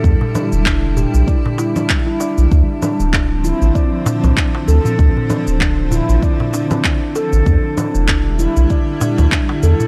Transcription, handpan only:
X:1
M:4/4
L:1/16
Q:"Swing 16ths" 1/4=97
K:Dm
V:1 name="Handpan"
D z D2 D z G z d z E D z E d z | D z D2 D z E2 d z D2 D2 A z | D z D2 D z E2 d z D2 D2 A z | D z D2 D z E2 d z D2 D2 A z |]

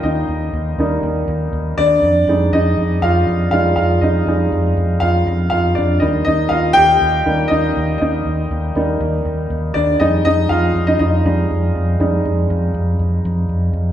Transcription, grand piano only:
X:1
M:4/4
L:1/16
Q:1/4=120
K:Fdor
V:1 name="Grand piano"
[Ee]12 z2 [Dd]2- | [Dd]4 [Ee]4 [Ff]4 [Ff]2 [Ff]2 | [Ee]6 z2 [Ff]4 [Ff]2 [Dd]2 | e2 [Ee]2 [Ff]2 [Gg]6 [Ee]4 |
[Ee]12 z2 [Dd]2 | [Ee]2 [Ee]2 [Ff]3 [Ee] [Ee]8- | [Ee]12 z4 |]
V:2 name="Grand piano" clef=bass
z6 [G,B,E]8- [G,B,E]2 | z2 [G,A,E]8- [G,A,E]2 [G,A,E]2 z2 | z2 [G,A,E]2 z12 | [G,B,E]2 z8 [G,B,E]2 z4 |
z6 [G,B,E]2 z8 | [G,A,]2 z8 [G,A,E]2 z4 | [G,A,E]2 z12 z2 |]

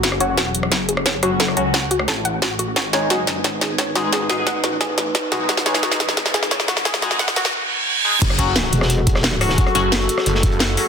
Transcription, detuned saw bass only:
X:1
M:4/4
L:1/8
Q:1/4=176
K:F#dor
V:1 name="Detuned saw bass" clef=bass
F,,,2 E,,,2 F,,,4- | F,,, C,,3 A,,,3 A,,, | G,,,2 F,,,2 G,,,4- | G,,, A,,,4- A,,, z B,,, |
G,,,2 F,,,2 G,,,4- | G,,, G,,,2 z4 z | F,,,3 z4 z | z F,,,2 z F,,,3 z |]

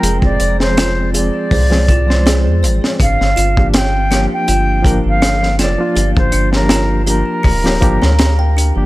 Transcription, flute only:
X:1
M:4/4
L:1/16
Q:"Swing 16ths" 1/4=81
K:Gphr
V:1 name="Flute"
B d2 c3 d8- d z | f4 g3 g4 f3 d2- | d c2 B3 B8- B z |]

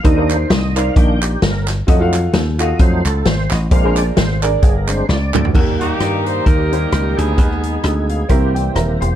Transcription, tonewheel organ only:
X:1
M:4/4
L:1/8
Q:"Swing" 1/4=131
K:Eb
V:1 name="Tonewheel organ"
e c e f g G B z | z3 e c =A c e | f d c z (3A B c d2 | z8 |
z6 B c |]
V:2 name="Tonewheel organ"
[E,B,D] z3 [E,B,D] z3 | [_G,=A,E] z3 [G,A,E] z3 | [A,CD] z4 [A,CD] z2 | [E,G,B,_G=G]8 |
[A,_CEGA]4 [D,=E,B,=CG]4 |]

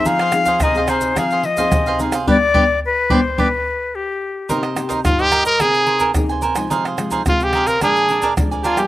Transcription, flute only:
X:1
M:4/4
L:1/8
Q:1/4=108
K:Cm
V:1 name="Flute"
f2 e c f e2 z | d2 =B c B2 G2 | z8 | z8 |]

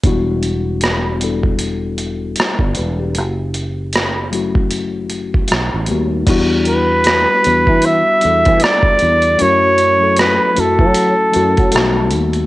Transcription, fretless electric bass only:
X:1
M:4/4
L:1/16
Q:"Swing 16ths" 1/4=77
K:Edor
V:1 name="Fretless electric bass" clef=bass
E,,,12 z G,,, E,,,2 | F,,,12 B,,, A,,, ^D,,2 | E,,4- E,, z E,, E,2 z E,, E, z2 E,,2 | F,,4- F,, z F,, F,2 z F,, F, B,,,2 ^D,,2 |]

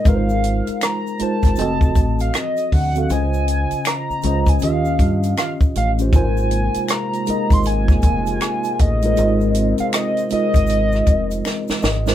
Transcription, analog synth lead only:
X:1
M:4/4
L:1/16
Q:"Swing 16ths" 1/4=79
K:Ab
V:1 name="Analog synth lead"
f4 b2 =a4- a f e2 _g2 | a4 b3 a f4 f2 f2 | a4 b3 c' a6 e2- | e3 f e2 e8 z2 |]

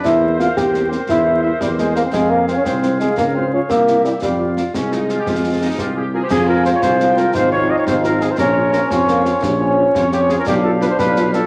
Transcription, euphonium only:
X:1
M:6/8
L:1/16
Q:3/8=115
K:Fm
V:1 name="Euphonium"
=E4 F2 G4 C2 | =E4 E2 G,2 A,2 B, C | A,2 B,2 C D C4 A,2 | B,2 C2 D2 B,4 G,2 |
G,4 z2 A,6- | A,8- A,2 z2 | F12 | E12 |
D6 C2 B,2 C2 | D12 | =D12 |]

